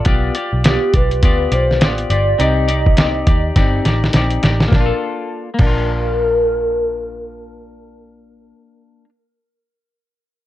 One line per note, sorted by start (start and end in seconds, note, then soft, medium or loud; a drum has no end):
0.05 0.29 B1 medium
0.05 0.35 B3 medium
0.05 0.35 F4 medium
0.05 0.36 G4 medium
0.05 0.34 D5 medium
0.05 kick loud
0.05 closed hi-hat medium
0.35 0.64 F4 soft
0.35 0.65 G4 medium
0.35 0.64 D5 medium
0.35 closed hi-hat medium
0.53 0.76 B1 medium
0.64 0.94 B3 soft
0.64 0.94 F4 medium
0.64 0.96 G4 medium
0.64 0.94 G4 medium
0.64 0.93 D5 medium
0.64 snare medium
0.64 closed hi-hat medium
0.94 1.23 B1 medium
0.94 1.22 F4 soft
0.94 1.24 G4 soft
0.94 1.22 B4 medium
0.94 1.23 D5 soft
0.94 kick medium
0.94 closed hi-hat medium
1.11 closed hi-hat soft
1.22 1.46 D2 medium
1.22 1.52 B3 medium
1.22 1.52 F4 medium
1.22 1.52 G4 medium
1.22 1.55 B4 medium
1.22 1.51 D5 medium
1.22 kick medium
1.22 closed hi-hat medium
1.52 1.81 B1 medium
1.52 1.81 F4 soft
1.52 1.82 G4 soft
1.52 1.85 C5 medium
1.52 1.81 D5 soft
1.52 closed hi-hat medium
1.71 snare soft
1.81 2.04 A1 medium
1.81 2.10 B3 soft
1.81 2.11 F4 medium
1.81 2.10 G4 medium
1.81 2.43 D5 loud
1.81 2.09 D5 soft
1.81 snare loud
1.81 closed hi-hat medium
1.98 closed hi-hat soft
2.10 2.33 G1 medium
2.10 2.39 F4 soft
2.10 2.39 G4 soft
2.10 2.39 D5 medium
2.10 closed hi-hat medium
2.39 3.23 C2 medium
2.39 2.68 C4 medium
2.39 2.69 D#4 medium
2.39 2.68 G4 medium
2.39 2.67 D5 medium
2.39 4.15 D#5 loud
2.39 closed hi-hat medium
2.68 2.97 D#4 soft
2.68 2.98 G4 soft
2.68 2.97 D5 medium
2.68 closed hi-hat medium
2.86 kick medium
2.97 3.26 C4 soft
2.97 3.27 D#4 medium
2.97 3.27 G4 soft
2.97 3.26 D5 soft
2.97 snare medium
2.97 closed hi-hat medium
3.27 3.50 D#2 medium
3.27 3.55 D#4 soft
3.27 3.56 G4 soft
3.27 3.56 D5 soft
3.27 kick medium
3.27 closed hi-hat medium
3.56 3.79 G1 medium
3.56 3.85 C4 medium
3.56 3.85 D#4 medium
3.56 3.85 G4 medium
3.56 3.84 D5 medium
3.56 kick medium
3.56 snare soft
3.56 closed hi-hat medium
3.85 4.08 A1 medium
3.85 4.14 D#4 soft
3.85 4.15 G4 soft
3.85 4.14 D5 soft
3.85 snare medium
3.85 closed hi-hat medium
4.04 snare medium
4.13 4.37 A#1 medium
4.13 4.43 C4 medium
4.13 4.44 D#4 medium
4.13 4.43 G4 medium
4.13 4.42 D5 medium
4.13 snare medium
4.13 closed hi-hat medium
4.30 closed hi-hat soft
4.43 4.67 A1 medium
4.43 4.74 D#4 soft
4.43 4.73 G4 soft
4.43 4.72 D5 medium
4.43 snare medium
4.43 closed hi-hat medium
4.60 snare medium
4.68 4.90 A#1 medium
4.68 5.49 A#3 medium
4.68 4.90 A#4 medium
4.68 kick medium
4.73 5.49 D4 medium
4.73 snare medium
4.81 5.49 F4 medium
4.86 5.49 A4 medium
5.54 9.04 A#3 medium
5.59 8.51 A#1 medium
5.59 9.09 D4 medium
5.59 7.81 A#4 loud
5.59 kick medium
5.59 crash medium
5.67 9.09 F4 medium